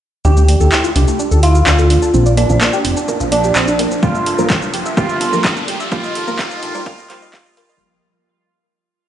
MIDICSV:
0, 0, Header, 1, 9, 480
1, 0, Start_track
1, 0, Key_signature, -1, "minor"
1, 0, Tempo, 472441
1, 253, Time_signature, 4, 2, 24, 8
1, 9230, End_track
2, 0, Start_track
2, 0, Title_t, "Synth bell"
2, 0, Program_c, 0, 98
2, 253, Note_on_c, 0, 79, 93
2, 696, Note_off_c, 0, 79, 0
2, 1452, Note_on_c, 0, 77, 91
2, 2319, Note_off_c, 0, 77, 0
2, 2412, Note_on_c, 0, 74, 95
2, 3279, Note_off_c, 0, 74, 0
2, 3372, Note_on_c, 0, 74, 92
2, 3998, Note_off_c, 0, 74, 0
2, 4092, Note_on_c, 0, 77, 92
2, 4535, Note_off_c, 0, 77, 0
2, 5052, Note_on_c, 0, 77, 98
2, 5495, Note_off_c, 0, 77, 0
2, 6012, Note_on_c, 0, 77, 97
2, 6455, Note_off_c, 0, 77, 0
2, 6492, Note_on_c, 0, 77, 101
2, 6935, Note_off_c, 0, 77, 0
2, 6973, Note_on_c, 0, 77, 106
2, 7194, Note_off_c, 0, 77, 0
2, 7214, Note_on_c, 0, 77, 104
2, 7434, Note_off_c, 0, 77, 0
2, 7453, Note_on_c, 0, 77, 104
2, 7674, Note_off_c, 0, 77, 0
2, 7693, Note_on_c, 0, 77, 100
2, 7914, Note_off_c, 0, 77, 0
2, 9230, End_track
3, 0, Start_track
3, 0, Title_t, "Ambient pad"
3, 0, Program_c, 1, 92
3, 252, Note_on_c, 1, 62, 75
3, 712, Note_on_c, 1, 69, 88
3, 733, Note_on_c, 1, 65, 77
3, 1118, Note_on_c, 1, 88, 76
3, 2172, Note_off_c, 1, 88, 0
3, 2173, Note_off_c, 1, 69, 0
3, 2711, Note_on_c, 1, 77, 91
3, 3037, Note_on_c, 1, 70, 75
3, 4626, Note_on_c, 1, 67, 89
3, 4862, Note_off_c, 1, 65, 0
3, 6012, Note_off_c, 1, 62, 0
3, 6012, Note_on_c, 1, 63, 80
3, 6209, Note_on_c, 1, 79, 99
3, 6771, Note_off_c, 1, 77, 0
3, 7932, Note_off_c, 1, 67, 0
3, 7932, Note_off_c, 1, 70, 0
3, 7933, Note_off_c, 1, 63, 0
3, 7933, Note_off_c, 1, 79, 0
3, 9230, End_track
4, 0, Start_track
4, 0, Title_t, "Synth arpeggio sound"
4, 0, Program_c, 2, 84
4, 253, Note_on_c, 2, 62, 80
4, 350, Note_off_c, 2, 62, 0
4, 375, Note_on_c, 2, 57, 75
4, 487, Note_off_c, 2, 57, 0
4, 492, Note_on_c, 2, 62, 73
4, 609, Note_off_c, 2, 62, 0
4, 615, Note_on_c, 2, 69, 79
4, 708, Note_off_c, 2, 69, 0
4, 733, Note_on_c, 2, 64, 88
4, 849, Note_off_c, 2, 64, 0
4, 855, Note_on_c, 2, 65, 74
4, 948, Note_off_c, 2, 65, 0
4, 973, Note_on_c, 2, 62, 78
4, 1070, Note_off_c, 2, 62, 0
4, 1095, Note_on_c, 2, 57, 78
4, 1207, Note_off_c, 2, 57, 0
4, 1213, Note_on_c, 2, 62, 82
4, 1329, Note_off_c, 2, 62, 0
4, 1336, Note_on_c, 2, 69, 73
4, 1428, Note_off_c, 2, 69, 0
4, 1452, Note_on_c, 2, 64, 74
4, 1569, Note_off_c, 2, 64, 0
4, 1575, Note_on_c, 2, 65, 75
4, 1668, Note_off_c, 2, 65, 0
4, 1693, Note_on_c, 2, 62, 85
4, 1790, Note_off_c, 2, 62, 0
4, 1816, Note_on_c, 2, 57, 78
4, 1927, Note_off_c, 2, 57, 0
4, 1933, Note_on_c, 2, 62, 72
4, 2049, Note_off_c, 2, 62, 0
4, 2055, Note_on_c, 2, 69, 77
4, 2148, Note_off_c, 2, 69, 0
4, 2173, Note_on_c, 2, 60, 82
4, 2289, Note_off_c, 2, 60, 0
4, 2296, Note_on_c, 2, 62, 80
4, 2388, Note_off_c, 2, 62, 0
4, 2413, Note_on_c, 2, 58, 74
4, 2510, Note_off_c, 2, 58, 0
4, 2535, Note_on_c, 2, 53, 79
4, 2647, Note_off_c, 2, 53, 0
4, 2652, Note_on_c, 2, 58, 85
4, 2769, Note_off_c, 2, 58, 0
4, 2775, Note_on_c, 2, 67, 75
4, 2868, Note_off_c, 2, 67, 0
4, 2893, Note_on_c, 2, 60, 79
4, 3009, Note_off_c, 2, 60, 0
4, 3016, Note_on_c, 2, 62, 80
4, 3108, Note_off_c, 2, 62, 0
4, 3133, Note_on_c, 2, 58, 83
4, 3230, Note_off_c, 2, 58, 0
4, 3255, Note_on_c, 2, 53, 79
4, 3367, Note_off_c, 2, 53, 0
4, 3374, Note_on_c, 2, 58, 72
4, 3490, Note_off_c, 2, 58, 0
4, 3496, Note_on_c, 2, 67, 76
4, 3589, Note_off_c, 2, 67, 0
4, 3613, Note_on_c, 2, 60, 88
4, 3729, Note_off_c, 2, 60, 0
4, 3735, Note_on_c, 2, 62, 76
4, 3828, Note_off_c, 2, 62, 0
4, 3853, Note_on_c, 2, 58, 77
4, 3950, Note_off_c, 2, 58, 0
4, 3975, Note_on_c, 2, 53, 76
4, 4087, Note_off_c, 2, 53, 0
4, 4092, Note_on_c, 2, 67, 70
4, 4209, Note_off_c, 2, 67, 0
4, 4215, Note_on_c, 2, 76, 73
4, 4308, Note_off_c, 2, 76, 0
4, 4333, Note_on_c, 2, 69, 66
4, 4449, Note_off_c, 2, 69, 0
4, 4455, Note_on_c, 2, 70, 73
4, 4548, Note_off_c, 2, 70, 0
4, 4572, Note_on_c, 2, 67, 82
4, 4670, Note_off_c, 2, 67, 0
4, 4695, Note_on_c, 2, 62, 72
4, 4807, Note_off_c, 2, 62, 0
4, 4812, Note_on_c, 2, 67, 74
4, 4929, Note_off_c, 2, 67, 0
4, 4935, Note_on_c, 2, 76, 76
4, 5028, Note_off_c, 2, 76, 0
4, 5052, Note_on_c, 2, 67, 82
4, 5169, Note_off_c, 2, 67, 0
4, 5175, Note_on_c, 2, 76, 74
4, 5268, Note_off_c, 2, 76, 0
4, 5292, Note_on_c, 2, 69, 73
4, 5409, Note_off_c, 2, 69, 0
4, 5415, Note_on_c, 2, 70, 71
4, 5508, Note_off_c, 2, 70, 0
4, 5532, Note_on_c, 2, 67, 79
4, 5630, Note_off_c, 2, 67, 0
4, 5655, Note_on_c, 2, 62, 75
4, 5767, Note_off_c, 2, 62, 0
4, 5773, Note_on_c, 2, 67, 75
4, 5889, Note_off_c, 2, 67, 0
4, 5895, Note_on_c, 2, 76, 71
4, 5988, Note_off_c, 2, 76, 0
4, 6012, Note_on_c, 2, 67, 79
4, 6129, Note_off_c, 2, 67, 0
4, 6135, Note_on_c, 2, 75, 75
4, 6228, Note_off_c, 2, 75, 0
4, 6253, Note_on_c, 2, 69, 75
4, 6369, Note_off_c, 2, 69, 0
4, 6375, Note_on_c, 2, 70, 77
4, 6468, Note_off_c, 2, 70, 0
4, 6493, Note_on_c, 2, 67, 91
4, 6609, Note_off_c, 2, 67, 0
4, 6615, Note_on_c, 2, 75, 77
4, 6708, Note_off_c, 2, 75, 0
4, 6733, Note_on_c, 2, 69, 80
4, 6849, Note_off_c, 2, 69, 0
4, 6856, Note_on_c, 2, 70, 77
4, 6948, Note_off_c, 2, 70, 0
4, 6973, Note_on_c, 2, 67, 84
4, 7089, Note_off_c, 2, 67, 0
4, 7095, Note_on_c, 2, 75, 78
4, 7188, Note_off_c, 2, 75, 0
4, 7213, Note_on_c, 2, 67, 81
4, 7329, Note_off_c, 2, 67, 0
4, 7335, Note_on_c, 2, 75, 75
4, 7428, Note_off_c, 2, 75, 0
4, 7453, Note_on_c, 2, 67, 89
4, 7569, Note_off_c, 2, 67, 0
4, 7575, Note_on_c, 2, 75, 82
4, 7668, Note_off_c, 2, 75, 0
4, 7693, Note_on_c, 2, 67, 91
4, 7809, Note_off_c, 2, 67, 0
4, 7816, Note_on_c, 2, 75, 80
4, 7908, Note_off_c, 2, 75, 0
4, 9230, End_track
5, 0, Start_track
5, 0, Title_t, "Analog polysynth"
5, 0, Program_c, 3, 90
5, 253, Note_on_c, 3, 67, 98
5, 695, Note_off_c, 3, 67, 0
5, 1453, Note_on_c, 3, 65, 101
5, 2319, Note_off_c, 3, 65, 0
5, 2413, Note_on_c, 3, 62, 96
5, 3279, Note_off_c, 3, 62, 0
5, 3373, Note_on_c, 3, 62, 101
5, 3999, Note_off_c, 3, 62, 0
5, 4092, Note_on_c, 3, 65, 93
5, 4535, Note_off_c, 3, 65, 0
5, 5053, Note_on_c, 3, 65, 103
5, 5495, Note_off_c, 3, 65, 0
5, 6012, Note_on_c, 3, 65, 96
5, 6455, Note_off_c, 3, 65, 0
5, 6493, Note_on_c, 3, 65, 108
5, 6935, Note_off_c, 3, 65, 0
5, 6973, Note_on_c, 3, 65, 103
5, 7194, Note_off_c, 3, 65, 0
5, 7213, Note_on_c, 3, 65, 107
5, 7434, Note_off_c, 3, 65, 0
5, 7453, Note_on_c, 3, 65, 113
5, 7674, Note_off_c, 3, 65, 0
5, 7693, Note_on_c, 3, 65, 104
5, 7914, Note_off_c, 3, 65, 0
5, 9230, End_track
6, 0, Start_track
6, 0, Title_t, "Synth stab"
6, 0, Program_c, 4, 62
6, 253, Note_on_c, 4, 53, 82
6, 253, Note_on_c, 4, 62, 80
6, 253, Note_on_c, 4, 64, 93
6, 586, Note_off_c, 4, 53, 0
6, 586, Note_off_c, 4, 62, 0
6, 586, Note_off_c, 4, 64, 0
6, 616, Note_on_c, 4, 53, 86
6, 616, Note_on_c, 4, 62, 80
6, 616, Note_on_c, 4, 64, 98
6, 730, Note_off_c, 4, 53, 0
6, 730, Note_off_c, 4, 62, 0
6, 730, Note_off_c, 4, 64, 0
6, 2172, Note_on_c, 4, 53, 82
6, 2172, Note_on_c, 4, 58, 74
6, 2172, Note_on_c, 4, 62, 91
6, 2506, Note_off_c, 4, 53, 0
6, 2506, Note_off_c, 4, 58, 0
6, 2506, Note_off_c, 4, 62, 0
6, 2535, Note_on_c, 4, 53, 86
6, 2535, Note_on_c, 4, 58, 86
6, 2535, Note_on_c, 4, 62, 104
6, 4064, Note_off_c, 4, 53, 0
6, 4064, Note_off_c, 4, 58, 0
6, 4064, Note_off_c, 4, 62, 0
6, 4092, Note_on_c, 4, 53, 77
6, 4092, Note_on_c, 4, 55, 70
6, 4092, Note_on_c, 4, 58, 82
6, 4426, Note_off_c, 4, 53, 0
6, 4426, Note_off_c, 4, 55, 0
6, 4426, Note_off_c, 4, 58, 0
6, 4455, Note_on_c, 4, 53, 82
6, 4455, Note_on_c, 4, 55, 74
6, 4455, Note_on_c, 4, 58, 90
6, 4569, Note_off_c, 4, 53, 0
6, 4569, Note_off_c, 4, 55, 0
6, 4569, Note_off_c, 4, 58, 0
6, 5052, Note_on_c, 4, 53, 77
6, 5052, Note_on_c, 4, 55, 75
6, 5052, Note_on_c, 4, 58, 88
6, 5386, Note_off_c, 4, 53, 0
6, 5386, Note_off_c, 4, 55, 0
6, 5386, Note_off_c, 4, 58, 0
6, 5415, Note_on_c, 4, 53, 81
6, 5415, Note_on_c, 4, 55, 77
6, 5415, Note_on_c, 4, 58, 93
6, 5529, Note_off_c, 4, 53, 0
6, 5529, Note_off_c, 4, 55, 0
6, 5529, Note_off_c, 4, 58, 0
6, 6012, Note_on_c, 4, 53, 81
6, 6012, Note_on_c, 4, 55, 76
6, 6012, Note_on_c, 4, 58, 95
6, 6345, Note_off_c, 4, 53, 0
6, 6346, Note_off_c, 4, 55, 0
6, 6346, Note_off_c, 4, 58, 0
6, 6374, Note_on_c, 4, 53, 86
6, 6374, Note_on_c, 4, 55, 77
6, 6375, Note_on_c, 4, 58, 95
6, 6473, Note_off_c, 4, 53, 0
6, 6473, Note_off_c, 4, 55, 0
6, 6474, Note_off_c, 4, 58, 0
6, 6491, Note_on_c, 4, 53, 83
6, 6491, Note_on_c, 4, 55, 70
6, 6491, Note_on_c, 4, 58, 91
6, 6825, Note_off_c, 4, 53, 0
6, 6825, Note_off_c, 4, 55, 0
6, 6825, Note_off_c, 4, 58, 0
6, 6854, Note_on_c, 4, 53, 87
6, 6854, Note_on_c, 4, 55, 86
6, 6854, Note_on_c, 4, 58, 105
6, 6953, Note_off_c, 4, 53, 0
6, 6953, Note_off_c, 4, 55, 0
6, 6953, Note_off_c, 4, 58, 0
6, 6971, Note_on_c, 4, 53, 84
6, 6971, Note_on_c, 4, 55, 73
6, 6971, Note_on_c, 4, 58, 93
6, 7193, Note_off_c, 4, 53, 0
6, 7193, Note_off_c, 4, 55, 0
6, 7193, Note_off_c, 4, 58, 0
6, 7211, Note_on_c, 4, 53, 86
6, 7211, Note_on_c, 4, 55, 79
6, 7211, Note_on_c, 4, 58, 99
6, 7433, Note_off_c, 4, 53, 0
6, 7433, Note_off_c, 4, 55, 0
6, 7433, Note_off_c, 4, 58, 0
6, 7451, Note_on_c, 4, 53, 89
6, 7451, Note_on_c, 4, 55, 80
6, 7451, Note_on_c, 4, 58, 100
6, 7673, Note_off_c, 4, 53, 0
6, 7673, Note_off_c, 4, 55, 0
6, 7673, Note_off_c, 4, 58, 0
6, 7692, Note_on_c, 4, 53, 87
6, 7692, Note_on_c, 4, 55, 80
6, 7692, Note_on_c, 4, 58, 103
6, 7914, Note_off_c, 4, 53, 0
6, 7914, Note_off_c, 4, 55, 0
6, 7914, Note_off_c, 4, 58, 0
6, 9230, End_track
7, 0, Start_track
7, 0, Title_t, "Detuned saw bass"
7, 0, Program_c, 5, 39
7, 253, Note_on_c, 5, 38, 100
7, 571, Note_off_c, 5, 38, 0
7, 615, Note_on_c, 5, 38, 84
7, 706, Note_off_c, 5, 38, 0
7, 973, Note_on_c, 5, 36, 102
7, 1068, Note_off_c, 5, 36, 0
7, 1335, Note_on_c, 5, 38, 98
7, 1650, Note_off_c, 5, 38, 0
7, 1693, Note_on_c, 5, 38, 92
7, 2011, Note_off_c, 5, 38, 0
7, 2172, Note_on_c, 5, 34, 99
7, 2491, Note_off_c, 5, 34, 0
7, 2535, Note_on_c, 5, 34, 83
7, 2626, Note_off_c, 5, 34, 0
7, 2892, Note_on_c, 5, 29, 103
7, 2987, Note_off_c, 5, 29, 0
7, 3254, Note_on_c, 5, 34, 96
7, 3570, Note_off_c, 5, 34, 0
7, 3612, Note_on_c, 5, 34, 94
7, 3931, Note_off_c, 5, 34, 0
7, 4092, Note_on_c, 5, 31, 95
7, 4411, Note_off_c, 5, 31, 0
7, 4455, Note_on_c, 5, 31, 84
7, 4546, Note_off_c, 5, 31, 0
7, 4813, Note_on_c, 5, 29, 102
7, 4908, Note_off_c, 5, 29, 0
7, 5176, Note_on_c, 5, 31, 100
7, 5491, Note_off_c, 5, 31, 0
7, 5532, Note_on_c, 5, 31, 93
7, 5851, Note_off_c, 5, 31, 0
7, 6012, Note_on_c, 5, 27, 101
7, 6331, Note_off_c, 5, 27, 0
7, 6375, Note_on_c, 5, 27, 87
7, 6466, Note_off_c, 5, 27, 0
7, 6733, Note_on_c, 5, 34, 104
7, 6828, Note_off_c, 5, 34, 0
7, 7095, Note_on_c, 5, 27, 89
7, 7186, Note_off_c, 5, 27, 0
7, 7452, Note_on_c, 5, 34, 97
7, 7771, Note_off_c, 5, 34, 0
7, 9230, End_track
8, 0, Start_track
8, 0, Title_t, "Riser"
8, 0, Program_c, 6, 103
8, 253, Note_on_c, 6, 60, 79
8, 7933, Note_off_c, 6, 60, 0
8, 9230, End_track
9, 0, Start_track
9, 0, Title_t, "Drums"
9, 253, Note_on_c, 9, 45, 84
9, 253, Note_on_c, 9, 82, 55
9, 354, Note_off_c, 9, 45, 0
9, 354, Note_off_c, 9, 82, 0
9, 376, Note_on_c, 9, 82, 57
9, 477, Note_off_c, 9, 82, 0
9, 492, Note_on_c, 9, 46, 100
9, 594, Note_off_c, 9, 46, 0
9, 615, Note_on_c, 9, 82, 59
9, 717, Note_off_c, 9, 82, 0
9, 733, Note_on_c, 9, 39, 113
9, 733, Note_on_c, 9, 82, 54
9, 834, Note_off_c, 9, 39, 0
9, 834, Note_off_c, 9, 82, 0
9, 855, Note_on_c, 9, 82, 56
9, 957, Note_off_c, 9, 82, 0
9, 972, Note_on_c, 9, 45, 88
9, 972, Note_on_c, 9, 46, 103
9, 1074, Note_off_c, 9, 45, 0
9, 1074, Note_off_c, 9, 46, 0
9, 1095, Note_on_c, 9, 82, 58
9, 1197, Note_off_c, 9, 82, 0
9, 1212, Note_on_c, 9, 82, 59
9, 1314, Note_off_c, 9, 82, 0
9, 1335, Note_on_c, 9, 82, 53
9, 1437, Note_off_c, 9, 82, 0
9, 1452, Note_on_c, 9, 46, 106
9, 1554, Note_off_c, 9, 46, 0
9, 1575, Note_on_c, 9, 82, 57
9, 1677, Note_off_c, 9, 82, 0
9, 1692, Note_on_c, 9, 39, 122
9, 1692, Note_on_c, 9, 45, 86
9, 1692, Note_on_c, 9, 82, 56
9, 1794, Note_off_c, 9, 39, 0
9, 1794, Note_off_c, 9, 45, 0
9, 1794, Note_off_c, 9, 82, 0
9, 1815, Note_on_c, 9, 82, 58
9, 1917, Note_off_c, 9, 82, 0
9, 1932, Note_on_c, 9, 46, 104
9, 2034, Note_off_c, 9, 46, 0
9, 2055, Note_on_c, 9, 82, 59
9, 2156, Note_off_c, 9, 82, 0
9, 2172, Note_on_c, 9, 82, 57
9, 2274, Note_off_c, 9, 82, 0
9, 2295, Note_on_c, 9, 82, 54
9, 2397, Note_off_c, 9, 82, 0
9, 2412, Note_on_c, 9, 45, 81
9, 2412, Note_on_c, 9, 46, 101
9, 2514, Note_off_c, 9, 45, 0
9, 2514, Note_off_c, 9, 46, 0
9, 2535, Note_on_c, 9, 82, 57
9, 2637, Note_off_c, 9, 82, 0
9, 2652, Note_on_c, 9, 39, 117
9, 2652, Note_on_c, 9, 82, 56
9, 2754, Note_off_c, 9, 39, 0
9, 2754, Note_off_c, 9, 82, 0
9, 2775, Note_on_c, 9, 82, 56
9, 2877, Note_off_c, 9, 82, 0
9, 2892, Note_on_c, 9, 46, 107
9, 2994, Note_off_c, 9, 46, 0
9, 3015, Note_on_c, 9, 82, 58
9, 3116, Note_off_c, 9, 82, 0
9, 3132, Note_on_c, 9, 45, 89
9, 3132, Note_on_c, 9, 82, 55
9, 3234, Note_off_c, 9, 45, 0
9, 3234, Note_off_c, 9, 82, 0
9, 3255, Note_on_c, 9, 82, 54
9, 3356, Note_off_c, 9, 82, 0
9, 3372, Note_on_c, 9, 46, 110
9, 3474, Note_off_c, 9, 46, 0
9, 3495, Note_on_c, 9, 82, 55
9, 3597, Note_off_c, 9, 82, 0
9, 3612, Note_on_c, 9, 39, 119
9, 3612, Note_on_c, 9, 82, 59
9, 3714, Note_off_c, 9, 39, 0
9, 3714, Note_off_c, 9, 82, 0
9, 3735, Note_on_c, 9, 82, 61
9, 3837, Note_off_c, 9, 82, 0
9, 3852, Note_on_c, 9, 45, 91
9, 3852, Note_on_c, 9, 46, 109
9, 3954, Note_off_c, 9, 45, 0
9, 3954, Note_off_c, 9, 46, 0
9, 3975, Note_on_c, 9, 82, 57
9, 4077, Note_off_c, 9, 82, 0
9, 4092, Note_on_c, 9, 36, 118
9, 4093, Note_on_c, 9, 82, 55
9, 4194, Note_off_c, 9, 36, 0
9, 4194, Note_off_c, 9, 82, 0
9, 4215, Note_on_c, 9, 82, 51
9, 4317, Note_off_c, 9, 82, 0
9, 4332, Note_on_c, 9, 46, 111
9, 4434, Note_off_c, 9, 46, 0
9, 4455, Note_on_c, 9, 82, 56
9, 4557, Note_off_c, 9, 82, 0
9, 4572, Note_on_c, 9, 36, 122
9, 4572, Note_on_c, 9, 39, 116
9, 4572, Note_on_c, 9, 45, 88
9, 4572, Note_on_c, 9, 82, 52
9, 4673, Note_off_c, 9, 36, 0
9, 4674, Note_off_c, 9, 39, 0
9, 4674, Note_off_c, 9, 45, 0
9, 4674, Note_off_c, 9, 82, 0
9, 4695, Note_on_c, 9, 82, 55
9, 4797, Note_off_c, 9, 82, 0
9, 4812, Note_on_c, 9, 46, 109
9, 4913, Note_off_c, 9, 46, 0
9, 4935, Note_on_c, 9, 82, 54
9, 5036, Note_off_c, 9, 82, 0
9, 5052, Note_on_c, 9, 36, 125
9, 5052, Note_on_c, 9, 82, 57
9, 5154, Note_off_c, 9, 36, 0
9, 5154, Note_off_c, 9, 82, 0
9, 5175, Note_on_c, 9, 82, 53
9, 5277, Note_off_c, 9, 82, 0
9, 5292, Note_on_c, 9, 45, 91
9, 5292, Note_on_c, 9, 46, 117
9, 5394, Note_off_c, 9, 45, 0
9, 5394, Note_off_c, 9, 46, 0
9, 5415, Note_on_c, 9, 82, 53
9, 5517, Note_off_c, 9, 82, 0
9, 5532, Note_on_c, 9, 36, 126
9, 5532, Note_on_c, 9, 39, 125
9, 5532, Note_on_c, 9, 82, 53
9, 5634, Note_off_c, 9, 36, 0
9, 5634, Note_off_c, 9, 39, 0
9, 5634, Note_off_c, 9, 82, 0
9, 5655, Note_on_c, 9, 82, 57
9, 5757, Note_off_c, 9, 82, 0
9, 5772, Note_on_c, 9, 46, 115
9, 5874, Note_off_c, 9, 46, 0
9, 5895, Note_on_c, 9, 82, 57
9, 5997, Note_off_c, 9, 82, 0
9, 6012, Note_on_c, 9, 36, 124
9, 6012, Note_on_c, 9, 45, 94
9, 6012, Note_on_c, 9, 82, 54
9, 6113, Note_off_c, 9, 36, 0
9, 6114, Note_off_c, 9, 45, 0
9, 6114, Note_off_c, 9, 82, 0
9, 6135, Note_on_c, 9, 82, 53
9, 6237, Note_off_c, 9, 82, 0
9, 6252, Note_on_c, 9, 46, 109
9, 6354, Note_off_c, 9, 46, 0
9, 6375, Note_on_c, 9, 82, 51
9, 6476, Note_off_c, 9, 82, 0
9, 6492, Note_on_c, 9, 36, 123
9, 6492, Note_on_c, 9, 39, 117
9, 6492, Note_on_c, 9, 82, 53
9, 6594, Note_off_c, 9, 36, 0
9, 6594, Note_off_c, 9, 39, 0
9, 6594, Note_off_c, 9, 82, 0
9, 6615, Note_on_c, 9, 82, 55
9, 6717, Note_off_c, 9, 82, 0
9, 6732, Note_on_c, 9, 45, 98
9, 6732, Note_on_c, 9, 46, 110
9, 6834, Note_off_c, 9, 45, 0
9, 6834, Note_off_c, 9, 46, 0
9, 6856, Note_on_c, 9, 82, 53
9, 6957, Note_off_c, 9, 82, 0
9, 6972, Note_on_c, 9, 36, 127
9, 6973, Note_on_c, 9, 82, 55
9, 7074, Note_off_c, 9, 36, 0
9, 7074, Note_off_c, 9, 82, 0
9, 7095, Note_on_c, 9, 82, 52
9, 7197, Note_off_c, 9, 82, 0
9, 7213, Note_on_c, 9, 39, 61
9, 7213, Note_on_c, 9, 46, 114
9, 7314, Note_off_c, 9, 39, 0
9, 7314, Note_off_c, 9, 46, 0
9, 7335, Note_on_c, 9, 82, 56
9, 7437, Note_off_c, 9, 82, 0
9, 7452, Note_on_c, 9, 36, 127
9, 7453, Note_on_c, 9, 39, 118
9, 7453, Note_on_c, 9, 45, 94
9, 7453, Note_on_c, 9, 82, 51
9, 7554, Note_off_c, 9, 36, 0
9, 7554, Note_off_c, 9, 39, 0
9, 7554, Note_off_c, 9, 45, 0
9, 7554, Note_off_c, 9, 82, 0
9, 7576, Note_on_c, 9, 82, 54
9, 7677, Note_off_c, 9, 82, 0
9, 7693, Note_on_c, 9, 46, 110
9, 7794, Note_off_c, 9, 46, 0
9, 7815, Note_on_c, 9, 82, 57
9, 7917, Note_off_c, 9, 82, 0
9, 9230, End_track
0, 0, End_of_file